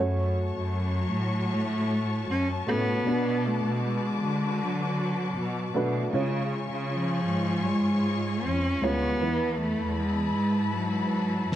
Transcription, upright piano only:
0.00 A3 C#4 F#4 C#5
2.67 A3 C#4 F#4 A4
3.05 B2 B3 D4 F#4 B4
5.74 A3 D4 F#4 B4
6.13 C#3 G#3 C#4 F4 C#5
8.82 G#3 C#4 F4 C#5
9.21 E3 B3 E4 B4

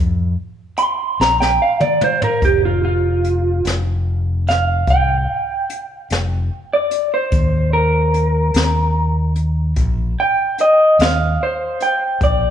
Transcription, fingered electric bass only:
Already playing: F2
1.20 A#1
2.43 F1
3.65 F1
4.87 C2
6.11 F1
7.32 D#2
8.55 D#2
9.76 A#1
10.99 D#2
12.21 A#1

